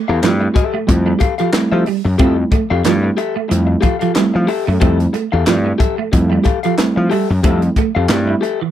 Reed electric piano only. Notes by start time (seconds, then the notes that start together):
0.22 G3 A3 C4 E4
0.87 G3 A3 C4 E4
1.53 G3 A3 C4 E4
2.18 G3 A3 C4 E4
2.84 G3 A3 C4 E4
3.50 G3 A3 C4 E4
4.16 G3 A3 C4 E4
4.81 G3 A3 C4 E4
5.47 G3 A3 C4 E4
6.13 G3 A3 C4 E4
6.78 G3 A3 C4 E4
7.44 G3 A3 C4 E4
8.09 G3 A3 C4 E4